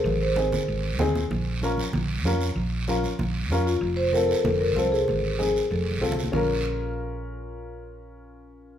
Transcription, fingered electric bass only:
\new Staff \with { instrumentName = "Fingered electric bass" } { \clef bass \time 4/4 \key bes \minor \tempo 4 = 191 aes,,2 aes,,4 ees,4 | bes,,2 bes,,4 f,4 | bes,,2 bes,,4 f,4 | f,,2 f,,4 c,4 |
aes,,2 f,,4 c,4 | bes,,1~ | bes,,1 | }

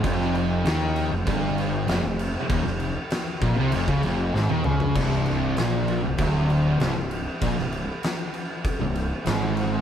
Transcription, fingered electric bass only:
\new Staff \with { instrumentName = "Fingered electric bass" } { \clef bass \time 4/4 \key f \dorian \tempo 4 = 98 f,,4 ees,8. f,,16 g,,4 f,,16 f,,8 r16 | ees,,16 f,,8 r8. bes,,16 c,16 f,,16 des,16 f,,8 aes,,16 ees,16 des,8 | c,,4 bes,,8. c,,16 d,,4 c,,16 c,,8 r16 | bes,,16 c,,8 r4. c,,8 r16 aes,,4 | }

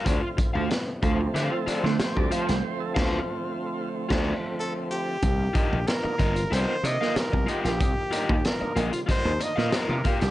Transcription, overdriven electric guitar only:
\new Staff \with { instrumentName = "Overdriven electric guitar" } { \time 4/4 \key c \dorian \tempo 4 = 93 <f' c'' d''>16 r8 <f' c'' f''>16 r8 <f' c'' f''>16 r16 <f' c'' f''>16 r16 <f' c'' d''>16 r8. <f' c'' f''>16 r16 | r8 <f' c'' f''>8 r4 r16 <f' c'' d''>8 r4 r16 | r8 <f' bes' ees''>16 r8. <f' bes' ees''>16 r16 <f' bes' ees''>16 r8 <f' bes' f''>16 r8 <f' bes' ees''>16 r16 | r8 <f' bes' ees''>16 r8. <f' bes' ees''>16 r16 <f' bes' ees''>16 r8 <f' bes' f''>16 <f' bes' ees''>16 r16 <f' bes' f''>16 r16 | }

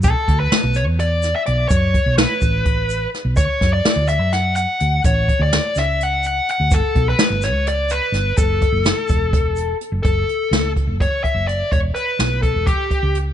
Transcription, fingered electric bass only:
\new Staff \with { instrumentName = "Fingered electric bass" } { \clef bass \time 7/8 \key fis \phrygian \tempo 4 = 126 b,,16 r16 d,8 r16 b,,8 e,4~ e,16 b,,8 | fis,8. b,,8 r16 a,,4.~ a,,16 b,,16 | d,16 r16 fis,8 r16 d,8 fis,4~ fis,16 d,8 | a,,8. d,8 r16 cis,4.~ cis,16 d,16 |
g,,16 r16 b,,8 r16 g,,8 cis,4~ cis,16 g,,8 | fis,,8. fis,,8 r16 e,,4.~ e,,16 fis,,16 | fis,,8 r8 cis,8. fis,,8 r8 fis,,8. | e,,8 r8 b,,8. e,,8 r8 cis,8. | }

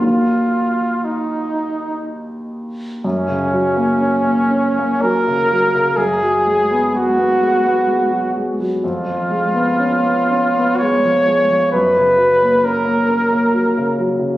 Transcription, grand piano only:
\new Staff \with { instrumentName = "Grand piano" } { \clef bass \time 3/4 \key ees \minor \tempo 4 = 63 <ees, ges bes ees'>2. | \key fis \major fis,16 cis16 fis16 ais16 cis'16 ais16 cis'16 ais16 fis16 cis16 fis16 cis16 | fis,16 fis16 gis16 b16 gis16 b16 gis16 b16 gis16 fis16 gis16 fis16 | eis,16 eis16 gis16 b16 cis'16 b16 cis'16 b16 gis16 eis16 gis16 eis16 |
fis,16 cis16 fis16 ais16 cis'16 ais16 cis'16 ais16 fis16 cis16 fis16 cis16 | }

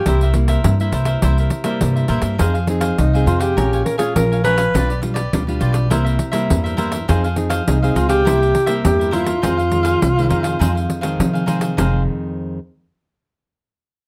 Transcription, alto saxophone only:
\new Staff \with { instrumentName = "Alto saxophone" } { \time 4/4 \key f \minor \tempo 4 = 102 g'8 r2. r8 | r4 ees'8 f'16 g'8. bes'16 aes'16 bes'8 b'8~ | b'8 r2. r8 | r4 ees'8 f'16 g'4~ g'16 g'8 f'8~ |
f'2. r4 | r1 | }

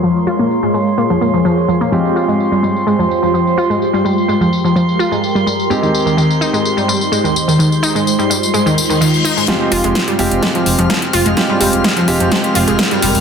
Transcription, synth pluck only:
\new Staff \with { instrumentName = "Synth pluck" } { \clef bass \time 4/4 \key f \minor \tempo 4 = 127 f16 r16 f'16 bes16 r16 aes16 aes16 r16 bes16 f16 bes16 f16 f16 r16 f16 bes16 | f16 r16 f'16 aes16 r16 g16 g16 r16 aes16 f16 r16 f16 f16 r16 f'16 aes16 | r16 g16 g16 r16 aes16 f16 r16 f16 f16 r16 f'16 aes16 r16 g16 g16 r16 | aes16 ees16 r16 ees16 ees16 r16 ees'16 aes16 r16 g16 g16 r16 aes16 ees16 r16 ees16 |
ees16 r16 ees'16 aes16 r16 g16 g16 r16 aes16 ees16 r16 ees16 ees16 r16 ees'16 aes16 | f16 r16 f'16 aes16 r16 g16 g16 r16 aes16 f16 r16 f16 f16 r16 f'16 aes16 | r16 g16 g16 r16 aes16 f16 r16 f16 f16 r16 f'16 aes16 r16 g16 g16 r16 | }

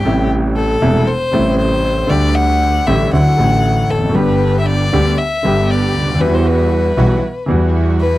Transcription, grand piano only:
\new Staff \with { instrumentName = "Grand piano" } { \clef bass \time 4/4 \key g \major \tempo 4 = 117 << { <a,, a, c g a e'>4. <e,, e, c g a e'>8 r8 <a,, a, c g a e'>4. | <d, d g a g'>4. <a,, a, d g a g'>8 <d, d fis a e'>8 <a,, a, d fis a e'>4. | <g,, g, d g b g'>4. <d, d g b g'>8 r8 <g,, g, d g b g'>4. | <e, e g b fis'>4. <b,, b, e g b fis'>8 r8 <e, e g b fis'>4. | } \\ { r1 | r2. r8 r32 e,32 f,32 fis,32 | r2. r8 r32 cis,32 d,32 ees,32 | r1 | } >> }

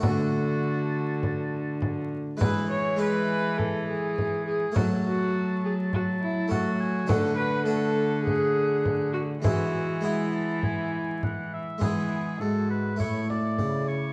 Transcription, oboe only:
\new Staff \with { instrumentName = "Oboe" } { \time 4/4 \key e \mixolydian \tempo 4 = 102 a''2.~ a''8 r8 | gis''4 gis''2. | a''2 a''4 a''8 gis''8 | fis''4 fis''2~ fis''8 r8 |
gis''4 gis''8 a''8 gis''4 fis''8 e''8 | gis'4 a'8 b'8 cis''8 d''4 cis''8 | }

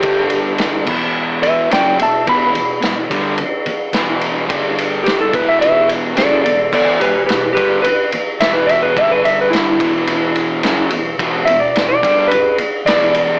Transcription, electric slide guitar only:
\new Staff \with { instrumentName = "Electric slide guitar" } { \time 4/4 \key e \minor \tempo 4 = 108 g'4. r4 <b' e''>8 <d'' g''>8 <e'' a''>8 | b''2. r4 | r4 g'16 a'16 b'16 e''16 e''8 r8 <a' d''>8 <a' d''>8 | <a' d''>8 <g' b'>8 <g' b'>8 <g' b'>8 b'8 r8 e''16 b'16 e''16 b'16 |
e''16 b'16 e''16 b'16 e'2. | r8 e''16 d''8 d''8. b'8 r8 d''4 | }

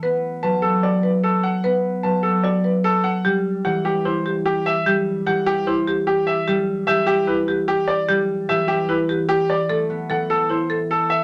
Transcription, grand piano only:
\new Staff \with { instrumentName = "Grand piano" } { \time 4/4 \key e \minor \tempo 4 = 149 r4 a''8 a'8 d''8 r8 a'8 fis''8 | r4 a''8 a'8 d''8 r8 a'8 fis''8 | r4 fis''8 g'8 c''8 r8 g'8 e''8 | r4 fis''8 g'8 c''8 r8 g'8 e''8 |
r4 e''8 g'8 b'8 r8 g'8 d''8 | r4 e''8 g'8 b'8 r8 g'8 d''8 | r4 fis''8 a'8 c''8 r8 a'8 e''8 | }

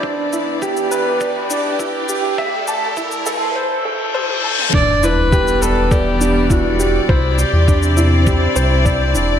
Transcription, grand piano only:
\new Staff \with { instrumentName = "Grand piano" } { \time 4/4 \key e \minor \tempo 4 = 102 d'8 e'8 g'8 b'8 d''8 d'8 e'8 g'8 | e''8 a''8 e'8 a'8 c''8 a'8 c''8 a''8 | d'8 e'8 g'8 b'8 d''8 d'8 e'8 g'8 | c''8 d''8 d'8 e'8 g'8 c''8 d''8 d'8 | }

